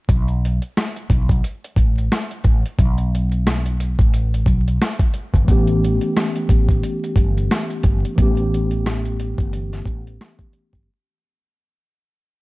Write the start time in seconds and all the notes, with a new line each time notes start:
0.09 B1, kick, closed hi-hat
0.28 closed hi-hat
0.45 closed hi-hat
0.62 closed hi-hat
0.77 cross-stick, snare, closed hi-hat
0.96 closed hi-hat
1.10 B1, kick, closed hi-hat
1.29 kick, closed hi-hat
1.44 closed hi-hat
1.64 closed hi-hat
1.76 A1, kick, closed hi-hat
1.98 closed hi-hat
2.12 cross-stick, snare, closed hi-hat
2.31 closed hi-hat
2.44 A1, kick, closed hi-hat
2.66 closed hi-hat
2.79 B1, kick, closed hi-hat
2.98 closed hi-hat
3.15 closed hi-hat
3.32 closed hi-hat
3.47 cross-stick, snare, closed hi-hat
3.66 closed hi-hat
3.80 closed hi-hat
3.99 A1, kick, closed hi-hat
4.14 closed hi-hat
4.34 closed hi-hat
4.46 B1, kick, closed hi-hat
4.68 closed hi-hat
4.82 cross-stick, snare, closed hi-hat
4.99 kick, closed hi-hat
5.14 closed hi-hat
5.34 G1, kick, closed hi-hat
5.45 A1 E3 A3 B3, kick, closed hi-hat
5.50 C#4 G4
5.67 closed hi-hat
5.84 closed hi-hat
6.01 closed hi-hat
6.17 cross-stick, snare, closed hi-hat
6.36 closed hi-hat
6.49 A1, kick, closed hi-hat
6.69 kick, closed hi-hat
6.83 closed hi-hat
7.04 closed hi-hat
7.16 G1, kick, closed hi-hat
7.37 closed hi-hat
7.51 cross-stick, snare, closed hi-hat
7.70 closed hi-hat
7.83 G1, kick, closed hi-hat
8.05 closed hi-hat
8.15 A1 E3 A3 B3, kick, closed hi-hat
8.20 C#4 G4
8.37 closed hi-hat
8.54 closed hi-hat
8.71 closed hi-hat
8.86 cross-stick, snare, closed hi-hat
9.05 closed hi-hat
9.20 closed hi-hat
9.38 G1, kick, closed hi-hat
9.53 closed hi-hat
9.73 snare, closed hi-hat
9.85 A1, kick, closed hi-hat
10.07 closed hi-hat
10.21 cross-stick, snare, closed hi-hat
10.39 kick, closed hi-hat
10.53 closed hi-hat
10.73 G1, kick, closed hi-hat